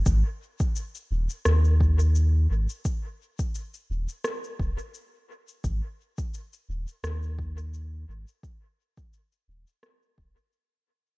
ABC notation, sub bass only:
X:1
M:4/4
L:1/8
Q:"Swing 16ths" 1/4=86
K:D#m
V:1 name="Sub bass" clef=bass
G,,, z2 D,,, D,,3 G,,, | z3 D,,, z D,,, z2 | G,,, z2 D,,, D,,3 G,,, | z3 D,,, z D,,, z2 |]